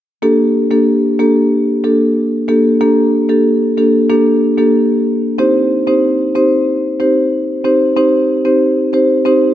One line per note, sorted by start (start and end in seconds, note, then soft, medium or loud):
0.22 0.40 A#3 medium
0.22 0.40 D4 medium
0.22 0.40 G4 medium
0.22 0.40 A4 loud
0.71 1.15 A#3 medium
0.71 1.16 D4 medium
0.71 1.16 G4 medium
0.71 1.16 A4 medium
1.19 1.49 A#3 medium
1.19 1.49 D4 medium
1.19 1.49 G4 medium
1.19 1.49 A4 medium
1.84 2.01 A#3 medium
1.84 2.01 D4 medium
1.84 2.01 G4 medium
1.84 2.01 A4 medium
2.48 2.78 A#3 medium
2.48 2.78 D4 medium
2.48 2.78 G4 medium
2.48 2.78 A4 medium
2.81 2.98 A#3 medium
2.81 2.98 D4 medium
2.81 2.98 G4 medium
2.81 2.98 A4 loud
3.29 3.74 A#3 medium
3.29 3.74 D4 medium
3.29 3.74 G4 medium
3.29 3.74 A4 medium
3.77 4.07 A#3 medium
3.77 4.07 D4 medium
3.77 4.07 G4 medium
3.77 4.07 A4 medium
4.09 4.54 A#3 medium
4.09 4.54 D4 medium
4.09 4.54 G4 medium
4.09 4.54 A4 medium
4.58 4.75 A#3 medium
4.58 4.75 D4 medium
4.58 4.75 G4 medium
4.58 4.75 A4 medium
5.38 5.56 C4 medium
5.38 5.56 D#4 medium
5.38 5.56 G4 medium
5.38 5.56 C5 loud
5.87 6.32 C4 medium
5.87 6.32 D#4 medium
5.87 6.32 G4 medium
5.87 6.32 C5 medium
6.35 6.65 C4 medium
6.35 6.65 D#4 medium
6.35 6.65 G4 medium
6.35 6.65 C5 medium
7.00 7.17 C4 medium
7.00 7.17 D#4 medium
7.00 7.17 G4 medium
7.00 7.17 C5 medium
7.64 7.94 C4 medium
7.64 7.94 D#4 medium
7.64 7.94 G4 medium
7.64 7.94 C5 medium
7.96 8.14 C4 medium
7.96 8.14 D#4 medium
7.96 8.14 G4 medium
7.96 8.14 C5 loud
8.45 8.90 C4 medium
8.45 8.90 D#4 medium
8.45 8.90 G4 medium
8.45 8.90 C5 medium
8.93 9.23 C4 medium
8.93 9.23 D#4 medium
8.93 9.23 G4 medium
8.93 9.23 C5 medium
9.25 9.54 C4 medium
9.25 9.54 D#4 medium
9.25 9.54 G4 medium
9.25 9.54 C5 loud